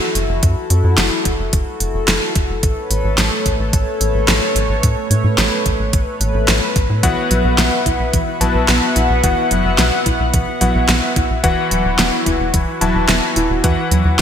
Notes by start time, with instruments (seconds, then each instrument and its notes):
Already playing: analog synth pad E4 F#4 A4
0.15 analog synth bass F#1, closed hi-hat
0.29 analog synth bass F#1
0.43 analog synth bass F#2, kick, closed hi-hat
0.70 analog synth bass F#2, closed hi-hat
0.84 analog synth bass F#2
0.98 analog synth bass F#1, snare, closed hi-hat
1.25 analog synth bass F#1, kick, closed hi-hat
1.39 analog synth bass F#1
1.53 analog synth bass F#1, kick, closed hi-hat
1.80 analog synth bass F#1, closed hi-hat
1.94 analog synth bass F#1
2.08 analog synth bass F#1, snare, closed hi-hat
2.35 analog synth bass F#1, kick, closed hi-hat
2.49 analog synth bass F#1
2.63 analog synth bass A1, analog synth pad A3 B4 C#5, kick, closed hi-hat
2.90 analog synth bass A1, closed hi-hat
3.04 analog synth bass A1
3.18 analog synth bass A1, snare, closed hi-hat
3.46 analog synth bass A1, kick, closed hi-hat
3.60 analog synth bass A1
3.73 analog synth bass A1, kick, closed hi-hat
4.01 analog synth bass A1, closed hi-hat
4.14 analog synth bass A1
4.28 analog synth bass A1, snare, closed hi-hat
4.55 analog synth bass A1, closed hi-hat
4.69 analog synth bass A1
4.83 analog synth bass A2, kick, closed hi-hat
5.10 analog synth bass A2, closed hi-hat
5.24 analog synth bass A2
5.38 analog synth bass A1, snare, closed hi-hat
5.66 analog synth bass A1, kick, closed hi-hat
5.79 analog synth bass A1
5.93 analog synth bass A1, kick, closed hi-hat
6.20 analog synth bass A1, closed hi-hat
6.34 analog synth bass A1
6.48 analog synth bass A1, snare, closed hi-hat
6.76 analog synth bass A1, kick, closed hi-hat
6.90 analog synth bass A2
7.03 analog synth bass B1, synth arpeggio sound E3, electric grand piano B3 E4 F#4 B4 F#5, analog synth pad B3 E5 F#5, kick, closed hi-hat
7.31 analog synth bass B1, synth arpeggio sound F#3, closed hi-hat
7.45 analog synth bass B1
7.58 analog synth bass B1, synth arpeggio sound B3, snare, closed hi-hat
7.86 analog synth bass B1, synth arpeggio sound E4, kick, closed hi-hat
7.99 analog synth bass B1
8.13 analog synth bass B1, synth arpeggio sound E3, kick, closed hi-hat
8.41 analog synth bass B1, synth arpeggio sound F#3, electric grand piano B3 E4 F#4 B4 A5, closed hi-hat
8.55 analog synth bass B1
8.68 analog synth bass B1, synth arpeggio sound B3, snare, closed hi-hat
8.96 analog synth bass B1, synth arpeggio sound E4, closed hi-hat
9.10 analog synth bass B1
9.24 analog synth bass F#1, synth arpeggio sound E3, electric grand piano B3 E4 F#4 B4 F#5, kick, closed hi-hat
9.51 analog synth bass F#1, synth arpeggio sound F#3, closed hi-hat
9.65 analog synth bass F#1
9.78 analog synth bass B1, synth arpeggio sound B3, snare, closed hi-hat
10.06 analog synth bass B1, synth arpeggio sound E4, kick, closed hi-hat
10.20 analog synth bass B1
10.34 analog synth bass B1, synth arpeggio sound E3, kick, closed hi-hat
10.61 analog synth bass B1, synth arpeggio sound F#3, electric grand piano B3 E4 F#4 B4 F#5, closed hi-hat
10.75 analog synth bass B1
10.89 analog synth bass B1, synth arpeggio sound B3, snare, closed hi-hat
11.16 analog synth bass B1, synth arpeggio sound E4, kick, closed hi-hat
11.30 analog synth bass B1
11.44 analog synth bass E1, electric grand piano E3 E4 F#4 B4 F#5, synth arpeggio sound E3, analog synth pad E4 F#4, kick, closed hi-hat
11.71 analog synth bass E1, synth arpeggio sound F#3, closed hi-hat
11.85 analog synth bass E1
11.99 analog synth bass E1, synth arpeggio sound B3, snare, closed hi-hat
12.26 analog synth bass E1, synth arpeggio sound E4, kick, closed hi-hat
12.40 analog synth bass E1
12.54 analog synth bass E1, synth arpeggio sound E3, kick, closed hi-hat
12.81 analog synth bass E1, electric grand piano E3 E4 F#4 B4 A5, synth arpeggio sound F#3, closed hi-hat
12.95 analog synth bass E1
13.09 analog synth bass E1, synth arpeggio sound B3, snare, closed hi-hat
13.36 analog synth bass E1, synth arpeggio sound E4, closed hi-hat
13.50 analog synth bass E1
13.64 analog synth bass E2, electric grand piano E3 E4 F#4 B4 F#5, synth arpeggio sound E3, kick, closed hi-hat
13.91 analog synth bass E2, synth arpeggio sound F#3, closed hi-hat
14.05 analog synth bass E2